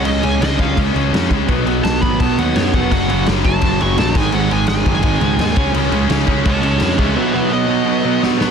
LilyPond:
<<
  \new Staff \with { instrumentName = "Lead electric guitar" } { \time 4/4 \key cis \mixolydian \tempo 4 = 169 dis''8 gis''8 dis''8 eis''8 r2 | r4 a''8 b''8 a''8 fis''8 cis''8 fis''8 | fis''4 r8 a''4 cis'''8 a''8 gis''8 | fis''8 gis''8 gis''2. |
r2 <cis'' a''>8 <cis'' a''>8 <cis'' a''>8 <gis' e''>8 | <b' e''>8 <b' e''>8 dis''2 r4 | }
  \new Staff \with { instrumentName = "Overdriven electric guitar" } { \clef bass \time 4/4 \key cis \mixolydian <cis gis cis'>8 <cis gis cis'>8 <cis gis cis'>8 <cis gis cis'>8 <cis gis cis'>8 <cis gis cis'>8 <cis gis cis'>8 <cis gis cis'>8 | <b, fis b>8 <b, fis b>8 <b, fis b>8 <b, fis b>8 <b, fis b>8 <b, fis b>8 <b, fis b>8 <b, fis b>8 | <fis, cis fis>8 <fis, cis fis>8 <fis, cis fis>8 <fis, cis fis>8 <fis, cis fis>8 <fis, cis fis>8 <fis, cis fis>8 <gis, dis gis>8 | <gis, dis gis>8 <gis, dis gis>8 <gis, dis gis>8 <gis, dis gis>8 <gis, dis gis>8 <gis, dis gis>8 <gis, dis gis>8 <cis gis cis'>8 |
<cis gis cis'>8 <cis gis cis'>8 <cis gis cis'>8 <cis gis cis'>8 <cis gis cis'>8 <cis gis cis'>8 <cis gis cis'>8 <cis gis cis'>8 | <b, fis b>8 <b, fis b>8 <b, fis b>8 <b, fis b>8 <b, fis b>8 <b, fis b>8 <b, fis b>8 <b, fis b>8 | }
  \new Staff \with { instrumentName = "Overdriven electric guitar" } { \clef bass \time 4/4 \key cis \mixolydian <cis gis cis'>8 <cis gis cis'>8 <cis gis cis'>8 <cis gis cis'>8 <cis gis cis'>8 <cis gis cis'>8 <cis gis cis'>8 <cis gis cis'>8 | <b, fis b>8 <b, fis b>8 <b, fis b>8 <b, fis b>8 <b, fis b>8 <b, fis b>8 <b, fis b>8 <b, fis b>8 | <fis, cis fis>8 <fis, cis fis>8 <fis, cis fis>8 <fis, cis fis>8 <fis, cis fis>8 <fis, cis fis>8 <fis, cis fis>8 <gis, dis gis>8 | <gis, dis gis>8 <gis, dis gis>8 <gis, dis gis>8 <gis, dis gis>8 <gis, dis gis>8 <gis, dis gis>8 <gis, dis gis>8 <cis gis cis'>8 |
<cis gis cis'>8 <cis gis cis'>8 <cis gis cis'>8 <cis gis cis'>8 <cis gis cis'>8 <cis gis cis'>8 <cis gis cis'>8 <cis gis cis'>8 | <b, fis b>8 <b, fis b>8 <b, fis b>8 <b, fis b>8 <b, fis b>8 <b, fis b>8 <b, fis b>8 <b, fis b>8 | }
  \new Staff \with { instrumentName = "Overdriven electric guitar" } { \clef bass \time 4/4 \key cis \mixolydian r1 | r1 | <fis, cis fis>8 <fis, cis fis>8 <fis, cis fis>8 <fis, cis fis>8 <fis, cis fis>8 <fis, cis fis>8 <fis, cis fis>8 <gis, dis gis>8 | <gis, dis gis>8 <gis, dis gis>8 <gis, dis gis>8 <gis, dis gis>8 <gis, dis gis>8 <gis, dis gis>8 <gis, dis gis>8 <cis gis cis'>8 |
<cis gis cis'>8 <cis gis cis'>8 <cis gis cis'>8 <cis gis cis'>8 <cis gis cis'>8 <cis gis cis'>8 <cis gis cis'>8 <cis gis cis'>8 | <b, fis b>8 <b, fis b>8 <b, fis b>8 <b, fis b>8 <b, fis b>8 <b, fis b>8 <b, fis b>8 <b, fis b>8 | }
  \new Staff \with { instrumentName = "Picked electric bass" } { \clef bass \time 4/4 \key cis \mixolydian cis,8 cis,8 cis,8 cis,8 cis,8 cis,8 eis,8 cis,8 | b,,8 b,,8 b,,8 gis,,8 b,,8 dis,8 fis,8 eis,,8 | fis,,8 fis,,8 fis,,8 fis,,8 fis,,8 fis,,8 ais,,8 gis,,8 | gis,,8 gis,,8 gis,,8 fis,,8 gis,,8 cis,8 dis,8 cis,8 |
cis,8 cis,8 cis,8 cis,8 cis,8 cis,8 eis,8 cis,8 | r1 | }
  \new DrumStaff \with { instrumentName = "Drums" } \drummode { \time 4/4 cymc8 cymc8 <cymc sn>8 <cymc bd>8 <cymc bd>8 cymc8 <cymc sn>8 <cymc bd>8 | <cymc bd>8 cymc8 <cymc sn>8 <cymc bd>8 <cymc bd>8 cymc8 <cymc sn>8 <cymc bd>8 | <cymc bd>8 cymc8 <cymc sn>8 <cymc bd>8 <cymc bd>8 cymc8 <cymc sn>8 <cymc bd>8 | cymc8 cymc8 <cymc sn>8 <cymc bd>8 <cymc bd>8 cymc8 <cymc sn>8 <cymc bd>8 |
cymc8 cymc8 <cymc sn>8 <cymc bd>8 <cymc bd>8 cymc8 <cymc sn>8 <cymc bd>8 | r4 r4 r4 sn8 sn8 | }
>>